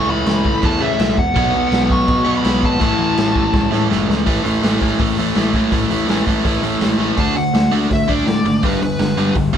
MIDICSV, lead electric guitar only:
0, 0, Header, 1, 2, 480
1, 0, Start_track
1, 0, Key_signature, 3, "major"
1, 0, Tempo, 363857
1, 1782, Time_signature, 4, 2, 24, 8
1, 12631, End_track
2, 0, Start_track
2, 0, Title_t, "Lead electric guitar"
2, 0, Program_c, 0, 29
2, 131, Note_on_c, 0, 83, 109
2, 856, Note_on_c, 0, 81, 100
2, 858, Note_off_c, 0, 83, 0
2, 1086, Note_off_c, 0, 81, 0
2, 1087, Note_on_c, 0, 76, 96
2, 1567, Note_on_c, 0, 78, 100
2, 1569, Note_off_c, 0, 76, 0
2, 2462, Note_off_c, 0, 78, 0
2, 2528, Note_on_c, 0, 85, 105
2, 3074, Note_off_c, 0, 85, 0
2, 3129, Note_on_c, 0, 83, 98
2, 3452, Note_off_c, 0, 83, 0
2, 3501, Note_on_c, 0, 81, 91
2, 5110, Note_off_c, 0, 81, 0
2, 9495, Note_on_c, 0, 81, 96
2, 9714, Note_off_c, 0, 81, 0
2, 9720, Note_on_c, 0, 78, 101
2, 10160, Note_off_c, 0, 78, 0
2, 10462, Note_on_c, 0, 76, 86
2, 10700, Note_off_c, 0, 76, 0
2, 10700, Note_on_c, 0, 74, 89
2, 11409, Note_off_c, 0, 74, 0
2, 11414, Note_on_c, 0, 71, 78
2, 11624, Note_off_c, 0, 71, 0
2, 11646, Note_on_c, 0, 71, 75
2, 12305, Note_off_c, 0, 71, 0
2, 12631, End_track
0, 0, End_of_file